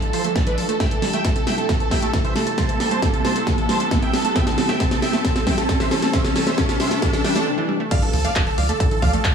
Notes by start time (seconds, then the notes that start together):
Already playing: F3 D4 E4 A4, riser
0.02 E3 A4, closed hi-hat
0.13 F3 A4 C5, open hi-hat
0.24 A3 A4, closed hi-hat
0.36 D3 A4, kick, snare, closed hi-hat
0.47 E3 D4 B4, closed hi-hat
0.58 F3 A4, open hi-hat
0.69 A3 A4, closed hi-hat
0.80 C3 G3 C4 E4 E5 G5, kick, snare, closed hi-hat
0.91 E3 A4, closed hi-hat
1.02 G3 A4, snare, open hi-hat
1.13 A3 E5 G5, closed hi-hat
1.24 C3 A4, kick, snare, closed hi-hat
1.35 C3 A4, closed hi-hat
1.47 G3 E5 G5, snare, open hi-hat
1.58 A3 A4, closed hi-hat
1.69 C3 A4, kick, snare, closed hi-hat
1.80 E3 A4, closed hi-hat
1.91 G3 E5 G5, kick, snare, open hi-hat
2.02 A3 A4, closed hi-hat
2.13 C3, kick, snare, closed hi-hat
2.25 E3 C5 E5, closed hi-hat
2.36 G3 A4, snare, open hi-hat
2.47 A3 A4, closed hi-hat
2.58 C3 C5 A5, kick, snare, closed hi-hat
2.69 E3 A4, closed hi-hat
2.80 G3 A4, snare, open hi-hat
2.91 A3 C5 A5, closed hi-hat
3.02 C3 A4, kick, snare, closed hi-hat
3.13 C3 A4, closed hi-hat
3.24 G3 C5 A5, snare, open hi-hat
3.35 A3 A4, closed hi-hat
3.47 C3 A4, kick, snare, closed hi-hat
3.58 E3 A4, closed hi-hat
3.69 G3 C5 A5, snare, open hi-hat
3.80 A3 A4, closed hi-hat
3.91 C3 A4, kick, snare, closed hi-hat
4.02 E3 E5 G5, closed hi-hat
4.13 G3 A4, snare, open hi-hat
4.25 A3 A4, closed hi-hat
4.36 C3 E5 G5, kick, snare, closed hi-hat
4.47 E3 A4, snare, closed hi-hat
4.58 G3 A4, snare, open hi-hat
4.69 A3 E5 G5, snare, closed hi-hat
4.80 C3 A4, kick, snare, closed hi-hat
4.91 C3 A4, snare, closed hi-hat
5.02 G3 E5 G5, snare, open hi-hat
5.13 A3 A4, snare, closed hi-hat
5.25 C3 A4, kick, snare, closed hi-hat
5.36 E3 A4, snare, closed hi-hat
5.47 G3 E5 G5, kick, snare, open hi-hat
5.58 A3 A4, snare, closed hi-hat
5.69 C3 A4, kick, snare, closed hi-hat
5.80 E3 C5 E5, snare, closed hi-hat
5.91 G3 A4, snare, open hi-hat
6.02 A3 A4, snare, closed hi-hat
6.13 C3 C5 E5, kick, snare, closed hi-hat
6.25 E3 A4, snare, closed hi-hat
6.36 G3 A4, snare, open hi-hat
6.47 A3 C5 E5, snare, closed hi-hat
6.58 C3 A4, kick, snare, closed hi-hat
6.69 C3 A4, snare, closed hi-hat
6.80 G3 C5 E5, snare, open hi-hat
6.91 A3 A4, snare, closed hi-hat
7.02 C3 A4, kick, snare, closed hi-hat, swell
7.13 E3 A4, snare, closed hi-hat
7.24 G3 E5 G5, snare, open hi-hat
7.35 A3 A4, snare, closed hi-hat
7.47 C3
7.58 E3
7.69 G3
7.80 A3
7.91 D3 A3 D4 E4 F4 D5 F5, kick, closed hi-hat, crash, impact
8.02 E3 A4, closed hi-hat
8.13 D2 F3 A4, open hi-hat
8.25 A3 D5 F5, closed hi-hat
8.36 D1 D3 A4, kick, clap, closed hi-hat
8.47 D3 A4, closed hi-hat
8.58 D2 F3 D5 F5, open hi-hat
8.69 A3 A4, closed hi-hat
8.80 D3 A4, kick, closed hi-hat
8.91 E3 A4, closed hi-hat
9.02 D2 F3 D5 F5, kick, open hi-hat
9.13 A3 A4, closed hi-hat
9.24 D3 A4, kick, clap, closed hi-hat